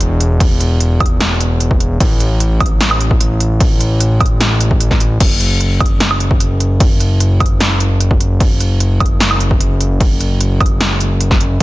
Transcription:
Already playing: E1
0.01 closed hi-hat
0.21 closed hi-hat
0.40 kick, closed hi-hat, crash
0.61 closed hi-hat
0.80 closed hi-hat
1.00 kick, closed hi-hat, high woodblock
1.06 closed hi-hat
1.21 snare, closed hi-hat
1.41 closed hi-hat
1.60 closed hi-hat
1.71 kick
1.80 closed hi-hat
2.00 A1, kick, closed hi-hat, crash
2.20 closed hi-hat
2.40 closed hi-hat
2.60 kick, closed hi-hat, high woodblock
2.66 closed hi-hat
2.81 snare, closed hi-hat
2.91 high woodblock
3.01 closed hi-hat
3.11 kick
3.21 closed hi-hat
3.40 closed hi-hat
3.60 kick, closed hi-hat, crash
3.81 closed hi-hat
4.01 closed hi-hat
4.20 kick, closed hi-hat, high woodblock
4.26 closed hi-hat
4.41 snare, closed hi-hat
4.61 closed hi-hat
4.71 kick
4.81 closed hi-hat
4.91 kick, snare
5.00 closed hi-hat
5.20 F#1, kick, closed hi-hat, crash
5.40 closed hi-hat
5.60 closed hi-hat
5.80 kick, closed hi-hat, high woodblock
5.86 closed hi-hat
6.00 snare, closed hi-hat
6.11 high woodblock
6.20 closed hi-hat
6.31 kick
6.40 closed hi-hat
6.60 closed hi-hat
6.80 kick, closed hi-hat, crash
7.00 closed hi-hat
7.20 closed hi-hat
7.40 kick, closed hi-hat, high woodblock
7.46 closed hi-hat
7.61 snare, closed hi-hat
7.80 closed hi-hat
8.01 closed hi-hat
8.11 kick
8.21 closed hi-hat
8.40 kick, closed hi-hat, crash
8.60 closed hi-hat
8.80 closed hi-hat
9.00 kick, closed hi-hat, high woodblock
9.06 closed hi-hat
9.20 snare, closed hi-hat
9.31 high woodblock
9.41 closed hi-hat
9.51 kick
9.61 closed hi-hat
9.81 closed hi-hat
10.01 kick, closed hi-hat, crash
10.21 closed hi-hat
10.41 closed hi-hat
10.61 kick, closed hi-hat, high woodblock
10.66 closed hi-hat
10.81 snare, closed hi-hat
11.01 closed hi-hat
11.21 closed hi-hat
11.31 kick, snare
11.41 closed hi-hat

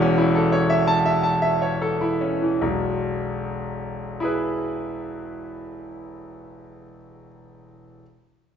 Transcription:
Already playing: E1 E2 E3
0.02 C#4
0.18 E4
0.35 A4
0.52 C#5
0.70 E5
0.87 A5
1.06 E5
1.23 A5
1.42 E5
1.62 C#5
1.82 A4
2.01 E4
2.21 C#4
2.42 E3
2.61 E1 B1
4.20 E4 G#4
4.24 B4

